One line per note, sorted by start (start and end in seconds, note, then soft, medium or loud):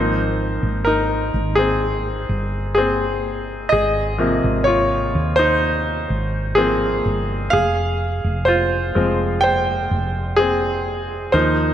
0.00 0.58 G#1 medium
0.00 1.30 F3 soft
0.00 1.30 A#3 soft
0.00 1.30 C4 soft
0.00 0.83 D#4 soft
0.00 0.88 C5 medium
0.63 1.30 G#1 medium
0.85 1.54 D#4 soft
0.85 1.59 A#4 medium
1.34 2.25 G#1 medium
1.55 2.73 C4 soft
1.55 2.72 G#4 medium
2.29 3.68 G1 medium
2.75 3.68 C4 medium
2.75 3.67 G#4 medium
3.69 4.40 G#1 medium
3.69 4.63 G#4 medium
3.69 4.69 D#5 medium
4.19 5.59 C3 soft
4.19 5.58 F3 soft
4.19 5.58 A#3 soft
4.44 5.17 G#1 medium
4.64 5.35 F4 medium
4.64 5.33 C#5 medium
5.15 6.06 D#2 medium
5.36 6.54 D#4 medium
5.36 6.60 C5 medium
6.10 7.01 G#1 medium
6.55 7.01 F3 soft
6.55 7.01 A#3 soft
6.55 7.49 C4 medium
6.55 7.52 G#4 medium
7.06 7.50 G1 medium
7.50 8.20 F1 medium
7.50 8.44 G#4 medium
7.50 8.50 F5 medium
8.24 8.92 F1 medium
8.45 9.39 F4 medium
8.45 9.38 C5 medium
8.95 9.87 F1 medium
8.95 11.30 F3 soft
8.95 11.30 G#3 soft
8.95 10.37 C4 soft
9.41 10.35 C5 medium
9.41 10.33 G5 medium
9.91 11.30 F1 medium
10.36 11.30 C4 medium
10.36 11.36 G#4 medium
11.32 11.74 D#2 medium
11.32 11.74 F3 soft
11.32 11.74 A#3 soft
11.32 11.74 D#4 medium
11.32 11.74 C5 medium